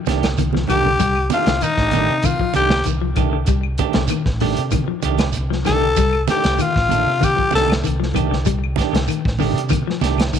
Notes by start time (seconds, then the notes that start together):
0.06 C2 D#3 A3 D4 G4, snare, closed hi-hat, high conga, shekere
0.23 snare, closed hi-hat, high conga, claves
0.37 C2 D#3, closed hi-hat, high conga, shekere
0.53 F3, snare, high conga
0.67 C2 D#3 A3 D4 G4, closed hi-hat, low conga, claves, shekere
0.84 D3, low conga
0.99 C2 G3, kick, closed hi-hat, shekere
1.16 claves
1.30 D#3 A3 D4 F4 G4, closed hi-hat, high conga, shekere
1.46 C2 D3, snare, closed hi-hat, high conga
1.61 D#3 D#4, closed hi-hat, claves, shekere
1.77 A1 A3 D4 G4, kick, snare
1.91 D#3 A3 D4 G4, closed hi-hat, high conga, low conga, shekere
2.09 C3
2.22 D#3 F4, kick, closed hi-hat, low conga, claves, shekere
2.39 F3, kick
2.54 C2 D#3 A3 D4 G4, closed hi-hat, high conga, shekere
2.70 snare, high conga, claves
2.84 C2 D#3, closed hi-hat, shekere
3.02 F3
3.16 C2 D#3 A3 D4 G4, kick, closed hi-hat, low conga, claves, shekere
3.33 D3
3.46 C2 G3, kick, closed hi-hat, shekere
3.63 claves
3.78 D#3 A3 D4 G4, kick, closed hi-hat, high conga, shekere
3.93 C2 D3, snare, closed hi-hat, high conga
4.07 D#3, closed hi-hat, high conga, claves, shekere
4.26 A1, kick, snare
4.40 D3 D#3 A3 D4 G4, open hi-hat, high conga, low conga, shekere
4.56 C3, closed hi-hat
4.71 D#3, kick, closed hi-hat, high conga, low conga, claves, shekere
4.88 F3
5.02 C2 D#3 A3 D4 G4, closed hi-hat, high conga, shekere
5.18 snare, closed hi-hat, high conga, claves
5.32 closed hi-hat, shekere
5.37 C2
5.50 F3, snare
5.64 C2 D#3 A3 D4 G4 A4, snare, closed hi-hat, low conga, claves, shekere
5.81 D3
5.96 C2 G3, kick, closed hi-hat, shekere
6.13 claves
6.28 D#3 A3 D4 G4, snare, closed hi-hat, high conga, shekere
6.43 C2 A3 G4, muted clean electric guitar stroke, snare, closed hi-hat, high conga
6.59 D#3 F4, closed hi-hat, high conga, claves, shekere
6.76 A1, kick, snare
6.89 D#3 A3 D4, muted clean electric guitar stroke, closed hi-hat, high conga, low conga, shekere
7.07 C3
7.21 D#3 G4, kick, closed hi-hat, high conga, claves, shekere
7.36 F3, kick
7.51 C2 D#3 A3 D4 G4, high conga, shekere
7.55 A4, snare, closed hi-hat
7.68 high conga, claves
7.72 snare
7.84 C2 D#3, closed hi-hat, shekere
8.00 F3, snare
8.14 C2 D#3 A3 D4 G4, kick, closed hi-hat, low conga, claves, shekere
8.31 D3, snare
8.45 C2 G3, kick, closed hi-hat, shekere
8.64 claves
8.76 D#3 A3 D4 G4, kick, snare, closed hi-hat, high conga, shekere
8.93 C2 D3, snare, closed hi-hat
9.08 D#3, closed hi-hat, claves, shekere
9.25 A1, kick, snare
9.39 D3 D#3 A3 D4 G4, open hi-hat, high conga, low conga, shekere
9.54 C3
9.58 closed hi-hat
9.69 D#3, kick, closed hi-hat, high conga, low conga, claves, shekere
9.87 F3, snare
10.01 C2 D#3 A3 D4 G4, snare, closed hi-hat, high conga, shekere
10.18 snare, closed hi-hat, high conga, claves
10.33 C2 D#3, closed hi-hat, shekere